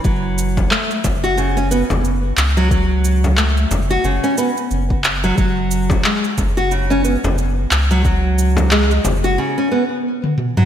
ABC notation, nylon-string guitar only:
X:1
M:4/4
L:1/16
Q:"Swing 16ths" 1/4=90
K:F#m
V:1 name="Nylon-string guitar" clef=bass
F,4 A, z2 F C, C B, z4 F, | F,4 A, z2 F C, C B, z4 F, | F,4 G, z2 F C, C B, z4 F, | F,4 G, z2 F C, C B, z4 F, |]